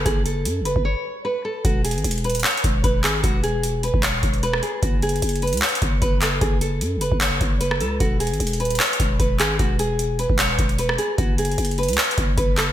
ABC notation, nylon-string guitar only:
X:1
M:4/4
L:1/8
Q:1/4=151
K:E
V:1 name="Nylon-string guitar"
G A2 B c2 B A | F G2 B c2 B G | F G2 B c2 B G | F G2 B c2 B A |
G A2 B c2 B A | F G2 B c2 B G | F G2 B c2 B G | F G2 B c2 B A |]